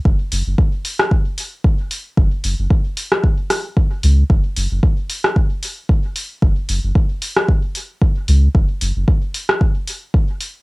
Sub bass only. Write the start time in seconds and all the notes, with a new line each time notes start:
0.05 F#1
0.32 F#1
0.46 F#1
2.17 F#1
2.44 F#1
2.59 F#1
4.03 C#2
4.30 F#1
4.56 F#1
4.71 F#1
6.42 F#1
6.69 F#1
6.83 F#1
8.28 C#2
8.55 F#1
8.81 F#1
8.96 F#1